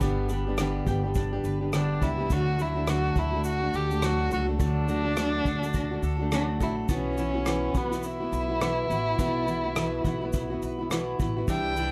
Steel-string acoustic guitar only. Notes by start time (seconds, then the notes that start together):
0.01 G2 D3 G3 B3 D4 G4
0.30 G3 B3 D4 G4
0.47 G3 B3 D4 G4
0.59 G2 D3 G3 B3 D4 G4
0.87 G3 B3 D4 G4
1.04 G3 B3 D4 G4
1.33 G3 B3 D4 G4
1.61 G3 B3 D4 G4
1.73 G2 D3 G3 B3 D4 G4
2.01 G3 B3 D4 G4
2.18 G3 B3 D4 G4
2.30 D3 F#3 A3 D4 F#4
2.58 F#3 A3 D4 F#4
2.75 A3 D4 F#4
2.87 D3 F#3 A3 D4 F#4
3.16 F#3 A3 D4 F#4
3.33 A3 D4 F#4
3.62 A3 D4 F#4
3.90 A3 D4 F#4
4.02 D3 F#3 A3 D4 F#4
4.30 F#3 A3 D4 F#4
4.47 A3 D4 F#4
4.59 D3 F#3 A3 D4 F#4
4.87 F#3 A3 D4 F#4
5.04 A3 D4 F#4
5.16 D3 F#3 A3 D4 F#4
5.44 F#3 A3 D4 F#4
5.62 A3 D4 F#4
5.91 A3 D4 F#4
6.19 A3 D4 F#4
6.31 D3 F#3 A3 D4 F#4
6.60 F#3 A3 D4 F#4
6.89 B2 E3 B3 E4 F#4
7.17 E3 B3 E4 F#4
7.34 B3 E4 F#4
7.46 B2 E3 B3 E4 F#4
7.74 E3 B3 E4 F#4
7.92 B3 E4 F#4
8.20 B3 E4 F#4
8.49 B3 E4 F#4
8.61 B2 E3 B3 E4 F#4
8.89 E3 B3 E4 F#4
9.18 B2 E3 B3 E4 F#4
9.47 E3 B3 E4 F#4
9.64 B3 E4 F#4
9.76 B2 E3 B3 E4 F#4
10.04 E3 B3 E4 F#4
10.21 B3 E4 F#4
10.50 B3 E4 F#4
10.79 B3 E4 F#4
10.90 B2 E3 B3 E4 F#4
11.19 E3 B3 E4 F#4
11.37 B3 E4 F#4
11.48 C3 E3 G3 D4 E4
11.76 E3 G3 D4 E4